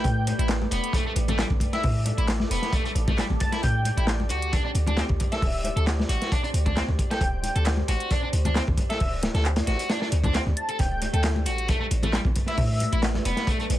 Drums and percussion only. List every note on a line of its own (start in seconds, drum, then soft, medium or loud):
0.04 kick loud
0.04 closed hi-hat medium
0.04 closed hi-hat soft
0.27 closed hi-hat medium
0.27 high conga medium
0.39 closed hi-hat soft
0.48 snare loud
0.48 clap loud
0.48 closed hi-hat medium
0.48 closed hi-hat soft
0.62 high conga loud
0.71 closed hi-hat medium
0.84 closed hi-hat soft
0.93 kick loud
0.93 closed hi-hat soft
0.93 closed hi-hat medium
1.16 closed hi-hat medium
1.16 muted conga soft
1.28 closed hi-hat soft
1.28 high conga loud
1.28 low conga loud
1.39 snare loud
1.39 clap loud
1.39 closed hi-hat medium
1.39 closed hi-hat soft
1.50 kick loud
1.50 low conga medium
1.60 kick loud
1.60 closed hi-hat medium
1.73 snare soft
1.73 closed hi-hat soft
1.83 kick loud
1.83 closed hi-hat soft
1.83 open hi-hat medium
2.06 closed hi-hat medium
2.06 high conga medium
2.18 closed hi-hat soft
2.28 snare loud
2.28 clap loud
2.28 closed hi-hat medium
2.28 closed hi-hat soft
2.40 snare medium
2.40 high conga medium
2.51 closed hi-hat medium
2.62 snare soft
2.62 closed hi-hat soft
2.73 kick loud
2.73 closed hi-hat medium
2.73 closed hi-hat soft
2.85 closed hi-hat soft
2.95 closed hi-hat medium
2.95 muted conga soft
3.08 kick loud
3.08 closed hi-hat soft
3.08 high conga medium
3.08 low conga medium
3.18 snare loud
3.18 clap loud
3.18 closed hi-hat soft
3.18 closed hi-hat loud
3.30 low conga medium
3.40 kick loud
3.40 closed hi-hat medium
3.52 snare soft
3.52 closed hi-hat soft
3.63 kick loud
3.63 closed hi-hat soft
3.63 closed hi-hat loud
3.85 closed hi-hat medium
3.85 high conga medium
3.98 closed hi-hat soft
4.07 snare loud
4.07 clap loud
4.07 closed hi-hat medium
4.07 closed hi-hat soft
4.20 high conga medium
4.29 closed hi-hat medium
4.42 closed hi-hat soft
4.53 kick loud
4.53 closed hi-hat soft
4.53 closed hi-hat medium
4.75 closed hi-hat medium
4.75 muted conga soft
4.86 closed hi-hat soft
4.86 high conga medium
4.86 low conga medium
4.97 snare loud
4.97 clap loud
4.97 closed hi-hat soft
4.97 closed hi-hat medium
5.09 kick loud
5.09 low conga medium
5.20 kick loud
5.20 closed hi-hat medium
5.32 snare soft
5.32 closed hi-hat soft
5.42 kick loud
5.42 closed hi-hat soft
5.42 open hi-hat medium
5.64 closed hi-hat medium
5.64 high conga medium
5.77 closed hi-hat soft
5.87 snare loud
5.87 clap loud
5.87 closed hi-hat medium
5.87 closed hi-hat soft
5.99 snare medium
5.99 high conga medium
6.09 closed hi-hat medium
6.22 snare soft
6.22 closed hi-hat soft
6.32 kick loud
6.32 closed hi-hat medium
6.32 closed hi-hat soft
6.44 closed hi-hat soft
6.54 closed hi-hat medium
6.54 muted conga soft
6.66 kick medium
6.66 closed hi-hat soft
6.66 high conga medium
6.66 low conga medium
6.77 snare loud
6.77 clap loud
6.77 closed hi-hat medium
6.77 closed hi-hat soft
6.88 low conga medium
6.99 kick medium
6.99 closed hi-hat medium
7.11 snare medium
7.11 closed hi-hat soft
7.21 kick loud
7.21 closed hi-hat medium
7.21 closed hi-hat soft
7.43 closed hi-hat medium
7.43 high conga medium
7.56 closed hi-hat soft
7.65 snare loud
7.65 clap loud
7.65 closed hi-hat medium
7.65 closed hi-hat soft
7.77 high conga loud
7.88 closed hi-hat medium
8.00 closed hi-hat soft
8.11 kick loud
8.11 closed hi-hat soft
8.11 closed hi-hat medium
8.33 closed hi-hat medium
8.33 muted conga soft
8.45 closed hi-hat soft
8.45 high conga medium
8.45 low conga medium
8.55 snare loud
8.55 clap loud
8.55 closed hi-hat soft
8.55 closed hi-hat medium
8.68 kick medium
8.68 low conga medium
8.77 kick loud
8.77 closed hi-hat medium
8.90 snare soft
8.90 closed hi-hat soft
9.00 kick loud
9.00 closed hi-hat soft
9.00 open hi-hat medium
9.23 snare loud
9.23 closed hi-hat medium
9.23 high conga medium
9.35 snare medium
9.35 closed hi-hat soft
9.45 clap loud
9.45 closed hi-hat medium
9.45 closed hi-hat soft
9.56 snare loud
9.56 closed hi-hat medium
9.56 high conga medium
9.67 snare medium
9.67 closed hi-hat medium
9.79 closed hi-hat soft
9.79 closed hi-hat medium
9.90 snare loud
9.90 closed hi-hat soft
9.90 closed hi-hat medium
10.02 snare medium
10.12 closed hi-hat medium
10.12 muted conga soft
10.24 kick medium
10.24 closed hi-hat soft
10.24 high conga medium
10.24 low conga medium
10.34 snare loud
10.34 clap loud
10.34 closed hi-hat soft
10.34 closed hi-hat loud
10.47 low conga medium
10.57 closed hi-hat medium
10.69 closed hi-hat soft
10.79 kick loud
10.79 closed hi-hat soft
10.79 closed hi-hat medium
10.79 low conga medium
10.92 muted conga soft
11.02 closed hi-hat medium
11.02 high conga medium
11.14 closed hi-hat soft
11.23 snare loud
11.23 clap loud
11.23 closed hi-hat medium
11.23 closed hi-hat soft
11.36 high conga medium
11.46 closed hi-hat medium
11.58 closed hi-hat soft
11.68 kick loud
11.68 closed hi-hat soft
11.68 closed hi-hat medium
11.91 closed hi-hat medium
11.91 muted conga soft
12.03 closed hi-hat soft
12.03 high conga medium
12.03 low conga medium
12.13 snare loud
12.13 clap loud
12.13 closed hi-hat medium
12.13 closed hi-hat soft
12.25 kick medium
12.25 low conga medium
12.36 kick loud
12.36 closed hi-hat medium
12.46 snare soft
12.46 closed hi-hat soft
12.57 kick loud
12.57 closed hi-hat soft
12.57 open hi-hat medium
12.80 closed hi-hat medium
12.80 high conga medium
12.93 closed hi-hat soft
13.03 snare loud
13.03 clap loud
13.03 closed hi-hat loud
13.03 closed hi-hat soft
13.14 snare medium
13.14 high conga loud
13.25 closed hi-hat medium
13.37 snare soft
13.37 closed hi-hat soft
13.47 kick loud
13.47 closed hi-hat medium
13.47 closed hi-hat soft
13.60 closed hi-hat soft
13.70 closed hi-hat medium
13.70 muted conga soft